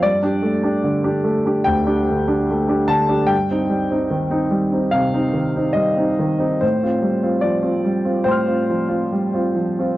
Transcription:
\new Staff \with { instrumentName = "Grand piano" } { \time 4/4 \key f \mixolydian \tempo 4 = 73 << { d''2 g''4. a''8 | g''2 f''4 ees''4 | c''4 d''4 <c'' g'' c''' f'''>2 | } \\ { g,16 <d' g'>16 a16 <d' g'>16 d16 <d' g'>16 a16 <d' g'>16 d,16 <d' g'>16 d16 <d' g'>16 a16 <d' g'>16 d16 <d' g'>16 | g,16 <c' ees'>16 g16 <c' ees'>16 ees16 <c' ees'>16 g16 <c' ees'>16 c16 <c' ees'>16 ees16 <c' ees'>16 g16 <c' ees'>16 ees16 <c' ees'>16 | a,16 <c' f'>16 g16 <c' f'>16 f16 <c' f'>16 g16 <c' f'>16 a,16 <c' f'>16 f16 <c' f'>16 g16 <c' f'>16 f16 <c' f'>16 | } >> }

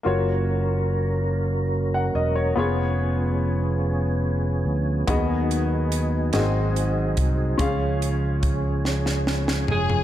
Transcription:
<<
  \new Staff \with { instrumentName = "Alto saxophone" } { \time 6/8 \key fis \major \tempo 4. = 48 r2. | r2. | r2. | r2 r8 gis'8 | }
  \new Staff \with { instrumentName = "String section" } { \time 6/8 \key fis \major r2. | r2. | r2. | r2 r8 gis'8 | }
  \new Staff \with { instrumentName = "Grand piano" } { \time 6/8 \key fis \major << { r2 r16 fis''16 dis''16 cis''16~ | cis''16 r2 r8. | dis4. gis,4. | cis4. r4. | } \\ { <ais eis' fis' cis''>2. | <b eis' gis' cis''>2. | <b fis' gis' dis''>4. <ais bis fis' gis' dis''>4. | <cis' eis' gis' eis''>2. | } >> }
  \new Staff \with { instrumentName = "Tonewheel organ" } { \time 6/8 \key fis \major <ais ais'>2. | <b gis'>2.~ | <b gis'>4. <bis gis'>4. | <gis gis'>2. | }
  \new Staff \with { instrumentName = "Tonewheel organ" } { \time 6/8 \key fis \major <fis cis'>2. | <eis cis'>2. | <fis dis'>2. | <eis cis'>2. | }
  \new Staff \with { instrumentName = "Fingered electric bass" } { \clef bass \time 6/8 \key fis \major fis,,2~ fis,,8 e,,8 | eis,,2~ eis,,8 d,8 | dis,4. gis,,4 bis,,8 | cis,2~ cis,8 eis,,8 | }
  \new DrumStaff \with { instrumentName = "Drums" } \drummode { \time 6/8 r4. r4. | r4. r4. | <hh bd>8 hh8 hh8 <hh sn>8 hh8 <hh bd>8 | <hh bd>8 hh8 <hh bd>8 sn16 sn16 sn16 sn16 tomfh16 tomfh16 | }
>>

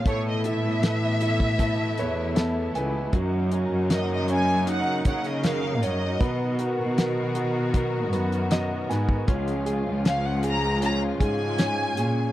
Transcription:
<<
  \new Staff \with { instrumentName = "Violin section" } { \time 4/4 \key fis \major \tempo 4 = 78 cis''16 dis''16 e''2. r8 | r4 dis''16 dis''16 gis''8 fis''8 fis''16 dis''16 eis''8 dis''8~ | dis''8 r2. r8 | r4 eis''16 fis''16 ais''8 ais''8 gis''4. | }
  \new Staff \with { instrumentName = "Grand piano" } { \time 4/4 \key fis \major a8 e'8 b'8 e'8 a'8 <b' cis''>8 <a' e''>8 <b' gis''>8 | fis8 cis'8 ais'8 cis'8 dis'8 cis''8 ais'8 cis''8 | b8 fis'8 ais'8 fis'8 ais'8 b8 <fis' dis''>8 <b gis''>8 | cis'8 gis'8 cis'8 gis'8 cis'8 gis'8 cis'8 gis'8 | }
  \new Staff \with { instrumentName = "Clean electric guitar" } { \time 4/4 \key fis \major <a b e' a'>8 <b e' a'>8 <a b e' a'>8 <b e' a'>8 <a b e' a'>4 <a b e' a'>8 <b e' a'>8 | <fis, dis fis ais cis' fis'>8 <fis ais cis' fis'>8 <fis, dis fis ais cis' fis'>8 <fis ais cis' fis'>8 <fis ais cis' fis'>4 <fis, dis fis ais cis' fis'>8 <fis ais cis' fis'>8 | <b, fis b dis' ais'>8 <b dis' ais'>8 <b, fis b dis' ais'>8 <b dis' ais'>8 <fis b dis' ais'>4 <b, fis b dis' ais'>8 <b dis' ais'>8 | <cis gis cis' eis' gis'>8 <cis' eis' gis'>8 <cis gis cis' eis' gis'>8 <cis' eis' gis'>8 <gis cis' eis' gis'>4 <cis gis cis' eis' gis'>8 <cis' eis' gis'>8 | }
  \new Staff \with { instrumentName = "String section" } { \clef bass \time 4/4 \key fis \major <b, e a e'>1 | <cis fis dis' ais'>1 | <dis b fis'>1 | <cis eis gis eis'>1 | }
  \new Staff \with { instrumentName = "Cello section" } { \clef bass \time 4/4 \key fis \major a,8. a,4.~ a,16 e,4 cis,8 | fis,8. fis,4.~ fis,16 cis4 fis,8 | b,8. b,4.~ b,16 fis,4 gis,8 | cis,8. cis,4.~ cis,16 gis,4 ais,8 | }
  \new DrumStaff \with { instrumentName = "Drums" } \drummode { \time 4/4 <hh bd>8 hh8 <hh sn>8 hh16 bd16 <hh bd>8 hh8 <hh sn>8 hh8 | <hh bd>8 hh8 <hh sn>8 hh8 hh8 <hh bd>16 hh16 <hh sn>8 hh8 | <hh bd>8 hh8 <hh sn>8 hh8 <hh bd>8 hh16 hh16 <hh sn>8 <hh sn>16 bd16 | <hh bd>16 hh16 hh8 <hh sn>8 hh8 hh8 <hh bd>8 <hh sn>8 hh8 | }
>>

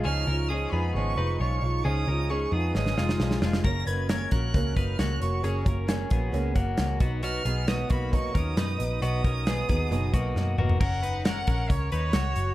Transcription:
<<
  \new Staff \with { instrumentName = "Violin" } { \time 4/4 \key ges \major \tempo 4 = 134 f'''4 ees'''8 ces'''8 des'''4 des'''4 | ees'''4 des'''8 ees'''8 ees'''4. r8 | bes'''8 aes'''8 aes'''8 ges'''4 f'''8 ges'''8 des'''8~ | des'''8 r2. r8 |
f'''4 ees'''8 ces'''8 des'''8 ees'''4. | ees'''2.~ ees'''8 r8 | ges''4 ges''4 des''8 des''4. | }
  \new Staff \with { instrumentName = "Clean electric guitar" } { \time 4/4 \key ges \major <des' aes'>8 <des' bes'>8 <des' aes'>8 <ces' aes'>4 <ees' ces''>8 <f' des''>4 | <des' aes'>8 <des' bes'>8 <des' aes'>8 <ces' aes'>4 <aes f'>4 <aes f'>8 | <des' bes'>8 <ees' ces''>8 <des' bes'>8 <des' bes'>4 <ees' ces''>8 <ges' des''>4 | <des' aes'>8 <des' bes'>8 <des' aes'>8 <ces' aes'>4 <bes ges'>4 <ces' ges'>8 |
<ces' ges'>8 <ces' aes'>8 <ces' ges'>8 <bes ges'>4 <des' bes'>8 <ees' ces''>4 | <ces' ges'>8 <des' bes'>8 <ces' aes'>8 <ces' aes'>4 <bes ges'>4 <bes ges'>8 | <des' bes'>8 <ees' ces''>8 <des' bes'>8 <des' bes'>4 <ees' ces''>8 <ges' des''>4 | }
  \new Staff \with { instrumentName = "Twelve-string acoustic guitar" } { \clef bass \time 4/4 \key ges \major <des f aes ees'>8 <f aes ees'>8 <des f aes ees'>8 <f aes ees'>8 <des f aes ees'>8 <f aes ees'>8 <des f aes ees'>8 <f aes ees'>8 | <des f aes ees'>8 <f aes ees'>8 <des f aes ees'>8 <f aes ees'>8 <des f aes ees'>8 <f aes ees'>8 <des f aes ees'>8 <f aes ees'>8 | <ges, des ges bes des'>8 <ges bes des'>8 <des ges bes des'>8 <ges bes des'>8 <ges, des ges bes des'>8 <ges bes des'>8 <des ges bes des'>8 <ges bes des'>8 | <ges, des ges bes des'>8 <ges bes des'>8 <des ges bes des'>8 <ges bes des'>8 <ges, des ges bes des'>8 <ges bes des'>8 <des ges bes des'>8 <ges ces' ees'>8 |
<ces ges ces' ees'>8 <ges ces' ees'>8 <ces ges ces' ees'>8 <ges ces' ees'>8 <ces ges ces' ees'>8 <ges ces' ees'>8 <ces ges ces' ees'>8 <ges ces' ees'>8 | <ces ges ces' ees'>8 <ges ces'>8 <ces ges ces' ees'>8 <ges ces' ees'>8 <ces ges ces' ees'>8 <ges ces' ees'>8 <ces ges ces' ees'>8 <ges ces' ees'>8 | r1 | }
  \new Staff \with { instrumentName = "Picked electric bass" } { \clef bass \time 4/4 \key ges \major des,8 des,4 f,8 aes,,8 f,,8 ces,8 ces,8 | des,8 des,4 f,8 aes,,8 f,,8 ces,8 f,,8 | ges,,8 ges,,4 bes,,8 des,8 ges,,8 des,8 f,,8 | ges,,8 ges,,4 bes,,8 des,8 ges,,8 des,8 ces,8~ |
ces,8 ces,4 ces,4 ees,8 ges,8 bes,,8 | ces,8 ces,4 ees,8 ges,,8 ces,8 ges,8 f,,8 | ges,,4. bes,,8 des,8 ees,8 des,8 ges,,8 | }
  \new DrumStaff \with { instrumentName = "Drums" } \drummode { \time 4/4 r4 r4 r4 r4 | r4 r4 sn16 sn16 sn16 sn16 sn16 sn16 sn16 sn16 | <hh bd>8 hh8 <hh sn>8 <hh bd>8 <hh bd>8 <hh bd>8 <hh sn>8 hh8 | hh8 <hh bd>8 <hh sn>8 <hh bd>8 hh8 <hh bd>8 <hh sn>8 <hh bd>8 |
hh8 hh8 <hh sn>8 <hh bd>8 <hh bd>8 <hh bd>8 <hh sn>8 hh8 | hh8 <hh bd>8 <hh sn>8 <hh bd>8 hh8 <hh bd>8 sn8 toml16 tomfh16 | <cymc bd>8 hh8 <hh sn>8 <hh bd>8 <hh bd>8 hh8 <hh sn>8 hh8 | }
>>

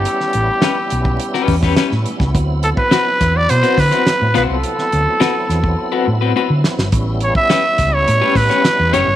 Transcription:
<<
  \new Staff \with { instrumentName = "Trumpet" } { \time 4/4 \key d \major \tempo 4 = 105 g'2~ g'8. r4 r16 | r8 a'16 b'4 d''16 c''8 b'4 b'16 a'16~ | a'2~ a'8. r4 r16 | r8 cis''16 e''4 cis''8. b'4 cis''8 | }
  \new Staff \with { instrumentName = "Clean electric guitar" } { \time 4/4 \key d \major r4 <cis' g' b'>16 r4 <cis' g' b'>16 r16 <cis' g' b'>16 <cis' g' b'>16 r8. | r4 <c' fis' b'>16 r4 <c' fis' b'>16 r16 <c' fis' c''>16 r8 <c' fis' c''>16 r16 | r4 <c' fis' b'>16 r4 <c' fis' b'>16 r16 <c' fis' b'>16 <c' fis' b'>16 r8. | r4 <cis' g' b'>16 r4 <cis' g' b'>16 r16 <cis' g' cis''>16 r8 <cis' g' cis''>16 r16 | }
  \new Staff \with { instrumentName = "Tonewheel organ" } { \time 4/4 \key d \major e'1~ | e'1~ | e'1 | e'1 | }
  \new Staff \with { instrumentName = "Tonewheel organ" } { \time 4/4 \key d \major << { <g cis'>1 | <fis c'>1~ | <fis c'>1 | <g cis'>1 | } \\ { b1~ | b1~ | b1~ | b1 | } >> }
  \new Staff \with { instrumentName = "Fingered electric bass" } { \clef bass \time 4/4 \key d \major r8 a,,16 r8. b,,8 r8 e,8 r16 a,16 r16 cis,16 | d,8. r8. e,8 b,16 r16 d16 r8 a,16 b,,16 c,16 | r8 d,16 r8. e,8 r8 a,8 r16 d16 r16 g,,16 | a,,8. r8. cis,8 a,16 r16 a,16 r8 e,16 fis,,16 g,,16 | }
  \new DrumStaff \with { instrumentName = "Drums" } \drummode { \time 4/4 hh16 sn16 hh8 <hh sn>8 hh16 bd16 hh16 sn16 <hho bd>16 <bd sn>16 <hh sn>16 sn16 hh16 <bd sn>16 | <hh bd>8 hh16 bd16 <hh sn>8 <hh bd sn>8 hh16 hh16 <hho bd sn>16 <hh sn>16 <hh sn>8 <hh sn>8 | hh16 sn16 hh8 <hh sn>8 <hh sn>16 bd16 r4 r8 sn16 sn16 | <hh bd>8 hh16 bd16 <hh sn>8 <hh bd sn>8 hh8 <hho bd sn>16 <hh sn>16 <hh sn>8 <hh sn>8 | }
>>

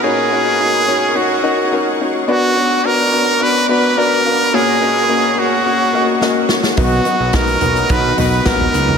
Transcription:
<<
  \new Staff \with { instrumentName = "String section" } { \time 4/4 \key b \lydian \tempo 4 = 107 << { <ais' dis'' cis'''>1 | <b d'' d'''>1 | <ais' cis'' cis'''>1 | <b dis'' dis'''>1 | } \\ { fis''1~ | fis''1~ | fis''1 | fis''1 | } >> }
  \new Staff \with { instrumentName = "Trumpet" } { \time 4/4 \key b \lydian gis'2 fis'4. r8 | fis'4 ais'4 b'8 b'8 ais'4 | gis'4. fis'2 r8 | fis'4 ais'4 b'8 b'8 ais'4 | }
  \new Staff \with { instrumentName = "Felt piano" } { \time 4/4 \key b \lydian <cis' dis' fis' ais' cis''>8 <cis' dis' fis' ais' dis''>8 <cis' dis' fis' ais' dis''>8 <cis' dis' fis' ais' cis''>8 <cis' dis' fis' ais' cis''>8 <cis' dis' fis' ais' dis''>8 <cis' dis' fis' ais' cis''>8 <cis' dis' fis' ais' cis''>8 | <b d' fis' b' d''>8 <b d' fis' b' cis''>8 <b d' fis' b' d''>8 <b d' fis' b' d''>8 <b d' fis' b' d''>8 <b d' fis' b' d''>8 <b d' fis' b' d''>8 <b d' fis' b' eis''>8 | <ais cis' fis' ais' cis''>8 <ais cis' fis' ais' dis''>8 <ais cis' fis' ais' dis''>8 <ais cis' fis' ais' cis''>8 <ais cis' fis' ais' cis''>8 <ais cis' fis' ais' dis''>8 <ais cis' fis' ais' dis''>8 <ais cis' fis' ais' cis''>8 | <b dis' fis' b' dis''>8 <b dis' fis' b' fis''>8 <b dis' fis' b' cis''>8 <b dis' fis' b' cis''>8 <b dis' fis' b' dis''>8 <b dis' fis' b' dis''>8 <b dis' fis' b' fis''>8 <b dis' fis' b' dis''>8 | }
  \new Staff \with { instrumentName = "Felt piano" } { \clef bass \time 4/4 \key b \lydian ais,4. r2 r8 | r1 | ais,4. r2 r8 | r1 | }
  \new Staff \with { instrumentName = "Steel-string acoustic guitar" } { \time 4/4 \key b \lydian r1 | r1 | r1 | <b, dis fis b dis' b'>8 <fis b dis' b'>8 <fis b dis' b'>8 <fis b dis' b'>8 <b, dis fis b dis' b'>8 <fis b dis' b'>8 <fis b dis' b'>8 <fis b dis' b'>8 | }
  \new Staff \with { instrumentName = "Analog synth bass" } { \clef bass \time 4/4 \key b \lydian r1 | r1 | r1 | b,,8 r16 b,,16 b,,8 b,,8 b,,8 b,,8 ais,,8 cis,8 | }
  \new DrumStaff \with { instrumentName = "Drums" } \drummode { \time 4/4 r4 r4 r4 r4 | r4 r4 r4 r4 | r4 r4 r4 sn8 sn16 sn16 | <hho bd>8 <hho hhp>8 <hho hhp bd sn>16 hho16 <hho hhp tomfh>16 hhp16 <hho hhp bd>8 <hho hhp tomfh>8 <hho hhp bd sn>16 tomfh16 <hho hhp>16 tomfh16 | }
>>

